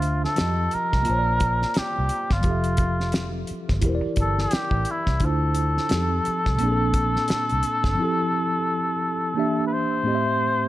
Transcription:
Already playing: fingered electric bass D2, tine electric piano D3 D4 F4 C5 E5, muted trumpet F4
0.02 closed hi-hat
0.24 muted trumpet A4, snare
0.36 tine electric piano F3 F4 G4 A5, snare, closed hi-hat
0.40 fingered electric bass F2, tine electric piano D#5
0.71 muted trumpet A#4, muted fingered electric bass stroke, closed hi-hat
0.92 fingered electric bass C2, kick, snare
1.03 tine electric piano A#3 F4, closed hi-hat
1.07 fingered electric bass A#1, tine electric piano C5 A5
1.12 tine electric piano C#5
1.19 tine electric piano D5
1.40 kick, closed hi-hat
1.62 snare
1.74 muted trumpet G4, snare, closed hi-hat
1.79 muted fingered electric bass stroke
1.99 fingered electric bass C2
2.09 closed hi-hat
2.30 fingered electric bass G1, muted trumpet F4, kick, snare
2.41 tine electric piano F3 F4, kick, closed hi-hat
2.45 fingered electric bass F1, tine electric piano G4 A4
2.51 tine electric piano E5
2.64 closed hi-hat
2.77 kick, closed hi-hat
3.00 snare
3.12 snare, closed hi-hat
3.47 muted fingered electric bass stroke, closed hi-hat
3.69 fingered electric bass G1, kick, snare
3.79 tine electric piano E3 E4, kick, closed hi-hat
3.84 fingered electric bass E1, tine electric piano G4 A#4
3.89 tine electric piano C5
3.95 tine electric piano D5
4.06 muted fingered electric bass stroke
4.16 fingered electric bass G1, kick, closed hi-hat
4.21 muted trumpet A4
4.38 muted trumpet G4, snare
4.51 muted fingered electric bass stroke, snare, closed hi-hat
4.71 fingered electric bass A1, kick
4.85 closed hi-hat
4.91 muted trumpet E4
5.06 fingered electric bass C2, kick, snare
5.20 fingered electric bass D2, tine electric piano D3 D4 E4 F4, kick, closed hi-hat
5.25 muted trumpet A4, tine electric piano C5
5.55 closed hi-hat
5.77 snare
5.89 fingered electric bass F2, tine electric piano F3 C4 D#4 G4, snare, closed hi-hat
5.94 tine electric piano A4
6.25 muted fingered electric bass stroke, closed hi-hat
6.46 fingered electric bass C2, kick, snare
6.56 tine electric piano A#2 A#3, closed hi-hat
6.61 fingered electric bass A#1, tine electric piano C4 D4
6.65 tine electric piano G#4
6.72 tine electric piano A4
6.94 kick, closed hi-hat
7.16 snare
7.28 muted fingered electric bass stroke, snare, closed hi-hat
7.49 fingered electric bass C2, closed hi-hat
7.63 closed hi-hat
7.84 fingered electric bass G1, kick, snare
7.95 tine electric piano F3 C4
8.00 tine electric piano E4 G4
8.04 tine electric piano A4
9.34 tine electric piano E3 A#3 D4 G4
9.39 tine electric piano E5
9.67 muted trumpet B4
9.73 muted trumpet C5
10.03 tine electric piano A2 A3 C4 G4
10.08 tine electric piano D#5
10.15 tine electric piano E5

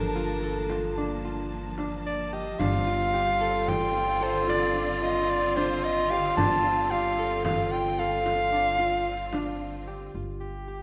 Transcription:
Already playing: upright bass G1, string section F3 A#3 A5, harp D4 F4 G4 A4, clarinet D4, soprano saxophone A#4
0.16 harp F4, frame drum
0.43 harp A4
0.69 harp F4, frame drum
0.98 harp D4
1.25 harp F4
1.78 harp D4, frame drum
2.06 soprano saxophone D5
2.33 harp G4, soprano saxophone D#5
2.59 upright bass G1, string section D3 C4 F4, harp D4, clarinet F4, soprano saxophone F5, frame drum
2.87 harp F4
3.14 harp G4
3.40 harp A4
3.68 soprano saxophone G5, frame drum
3.95 harp F4, frame drum
4.21 harp A4, soprano saxophone C5
4.47 harp F4, soprano saxophone D5, frame drum
4.74 harp D4
5.02 harp F4, soprano saxophone D#5
5.30 soprano saxophone D5
5.56 harp D4, soprano saxophone C5, frame drum
5.84 soprano saxophone D#5
6.10 harp G4, soprano saxophone F5
6.37 upright bass G1, harp D4, soprano saxophone A5, frame drum
6.64 harp F4, frame drum
6.91 harp G4, soprano saxophone F5, frame drum
7.18 harp A4
7.45 soprano saxophone F5, frame drum
7.72 harp F4, soprano saxophone G5
7.99 harp A4, soprano saxophone F5
8.26 harp F4, frame drum
8.52 harp D4
8.79 harp F4, frame drum
9.33 harp D4, frame drum
9.60 frame drum
9.87 harp G4
10.14 upright bass G1, harp F4
10.41 soprano saxophone G4
10.68 harp G4

